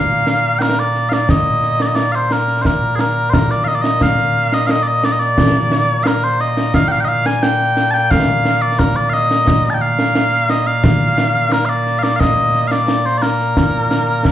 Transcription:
0.00 14.32 A#2 medium
0.00 14.32 A#3 medium
0.00 0.59 F5 loud
0.27 snare medium
0.59 0.79 A#4 medium
0.59 0.62 G5 medium
0.59 snare medium
0.79 1.09 D5 medium
0.95 snare soft
1.09 1.13 F5 medium
1.09 snare medium
1.13 1.30 D5 medium
1.29 1.82 D#5 medium
1.29 concert bass drum medium
1.29 snare medium
1.63 snare soft
1.80 1.87 D5 medium
1.80 snare medium
1.87 1.96 D#5 medium
1.96 2.12 D5 medium
1.96 snare loud
2.12 2.32 C5 medium
2.12 2.15 F5 medium
2.12 snare soft
2.31 2.62 A#4 medium
2.31 snare medium
2.48 snare soft
2.62 2.66 C5 medium
2.62 concert bass drum medium
2.62 snare medium
2.66 2.95 A#4 medium
2.95 3.00 G#4 medium
2.95 snare medium
3.00 3.30 A#4 medium
3.30 3.51 A#4 medium
3.30 3.34 C5 medium
3.30 concert bass drum medium
3.30 snare loud
3.50 3.64 D5 medium
3.50 snare soft
3.64 3.75 D#5 medium
3.64 3.68 F5 medium
3.64 snare soft
3.75 3.82 D5 medium
3.82 4.02 D#5 medium
3.82 snare medium
4.01 4.54 F5 loud
4.01 concert bass drum medium
4.01 snare medium
4.18 snare soft
4.52 4.67 D#5 loud
4.52 snare medium
4.67 4.83 D#5 loud
4.67 4.70 F5 medium
4.67 snare loud
4.83 4.88 D5 medium
4.88 5.05 D#5 loud
5.04 5.12 D5 loud
5.04 snare medium
5.12 5.20 D#5 medium
5.20 6.04 D5 loud
5.20 snare soft
5.38 concert bass drum medium
5.38 snare loud
5.72 snare medium
6.04 6.24 A#4 medium
6.04 6.07 F5 medium
6.04 snare loud
6.24 6.41 C5 medium
6.40 6.74 D#5 medium
6.40 snare soft
6.57 snare medium
6.74 6.88 F5 loud
6.74 concert bass drum medium
6.74 snare medium
6.88 7.00 F5 loud
6.88 6.91 G5 medium
6.88 snare soft
7.00 7.05 G5 medium
7.05 7.08 D#5 medium
7.05 7.26 F5 loud
7.26 7.43 G#5 loud
7.26 snare medium
7.43 7.91 G5 loud
7.43 snare loud
7.60 snare soft
7.77 snare medium
7.91 8.11 G5 loud
7.91 7.94 A5 loud
7.91 snare soft
8.11 8.62 F5 loud
8.11 concert bass drum medium
8.11 snare loud
8.45 snare medium
8.62 8.79 D5 loud
8.79 8.96 A#4 loud
8.79 concert bass drum medium
8.79 snare medium
8.96 9.10 D5 medium
9.10 9.70 D#5 loud
9.10 9.13 F5 loud
9.14 snare soft
9.31 snare medium
9.47 concert bass drum medium
9.47 snare loud
9.64 snare soft
9.70 9.74 A5 medium
9.74 9.81 G5 medium
9.81 10.50 F5 loud
9.99 snare medium
10.15 snare loud
10.32 snare soft
10.50 10.67 D#5 medium
10.50 snare medium
10.67 11.52 F5 loud
10.67 snare soft
10.84 concert bass drum medium
10.84 snare loud
11.18 snare medium
11.52 11.66 A#4 medium
11.52 snare loud
11.66 11.99 D5 medium
11.66 11.69 F5 medium
11.87 snare soft
11.99 12.03 F5 medium
12.03 12.16 D5 medium
12.03 snare medium
12.16 12.67 D#5 loud
12.16 12.20 F5 loud
12.21 concert bass drum medium
12.21 snare medium
12.54 snare soft
12.67 12.72 F5 medium
12.71 13.06 D5 medium
12.71 snare medium
12.88 snare loud
13.06 13.18 C5 medium
13.06 snare soft
13.18 13.22 D5 medium
13.22 14.32 A#4 medium
13.22 snare medium
13.40 snare soft
13.57 concert bass drum medium
13.57 snare medium
13.91 snare medium
14.25 concert bass drum medium
14.25 snare loud

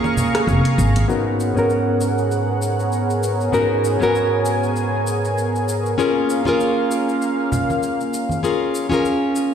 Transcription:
0.00 1.04 A#3 loud
0.00 1.05 C#4 loud
0.00 1.06 F4 medium
0.00 1.04 G#4 medium
0.00 1.06 G#4 loud
0.00 1.04 F5 medium
0.00 1.04 A#5 medium
0.00 1.05 C#6 loud
0.04 muted conga medium
0.04 shaker soft
0.17 low conga medium
0.17 shaker medium
0.35 cross-stick medium
0.35 closed hi-hat medium
0.35 shaker soft
0.47 0.61 F1 loud
0.47 shaker soft
0.65 closed hi-hat soft
0.65 shaker soft
0.78 1.02 G#1 medium
0.78 shaker medium
0.96 closed hi-hat medium
0.96 high conga medium
0.96 shaker soft
1.07 1.52 G#2 medium
1.07 1.52 B3 medium
1.07 5.94 B3 medium
1.07 1.53 C#4 medium
1.07 1.53 D#4 medium
1.07 1.53 F#4 medium
1.07 9.54 G#4 medium
1.07 5.94 A#4 medium
1.07 1.53 A#4 medium
1.07 9.54 C#5 medium
1.07 3.51 F#5 medium
1.07 shaker soft
1.40 shaker medium
1.55 3.49 G#2 medium
1.55 3.50 B3 medium
1.55 3.50 C#4 medium
1.55 3.51 F#4 medium
1.55 3.51 A#4 medium
1.55 shaker soft
1.70 shaker soft
2.01 shaker medium
2.18 shaker soft
2.31 shaker soft
2.62 shaker medium
2.80 shaker soft
2.92 shaker soft
3.10 shaker soft
3.23 shaker medium
3.41 shaker soft
3.52 3.97 G#2 medium
3.52 3.97 B3 medium
3.52 3.97 C#4 medium
3.52 3.97 D#4 medium
3.52 3.98 F#4 medium
3.52 3.98 A#4 medium
3.52 5.95 G#5 medium
3.52 shaker soft
3.85 shaker medium
4.00 5.94 G#2 medium
4.00 5.95 B3 medium
4.00 5.95 C#4 medium
4.00 5.96 F#4 medium
4.00 5.96 A#4 loud
4.00 shaker soft
4.15 shaker soft
4.45 shaker medium
4.63 shaker soft
4.76 shaker soft
5.07 shaker medium
5.25 shaker soft
5.38 shaker soft
5.56 shaker soft
5.69 shaker medium
5.86 shaker soft
5.98 9.54 A#3 medium
5.98 6.42 C#4 medium
5.98 6.42 F4 medium
5.98 6.43 G#4 medium
5.98 6.43 A#4 medium
5.98 9.54 F5 medium
5.98 shaker soft
6.30 shaker medium
6.45 8.39 C#4 medium
6.45 8.40 F4 medium
6.45 8.41 G#4 medium
6.45 8.41 A#4 loud
6.45 muted conga medium
6.45 shaker soft
6.60 shaker soft
6.91 shaker medium
7.09 shaker soft
7.22 shaker soft
7.52 muted conga soft
7.52 low conga medium
7.52 shaker medium
7.70 muted conga soft
7.70 shaker soft
7.83 shaker soft
8.01 shaker soft
8.14 shaker medium
8.29 high conga medium
8.29 shaker soft
8.43 8.87 C#4 medium
8.43 8.87 F4 medium
8.43 8.88 G#4 medium
8.43 8.88 A#4 medium
8.43 shaker soft
8.75 shaker medium
8.89 9.54 C#4 medium
8.89 9.54 F4 medium
8.89 9.54 G#4 medium
8.89 muted conga medium
8.89 shaker soft
8.94 9.54 A#4 loud
9.05 shaker soft
9.36 shaker medium

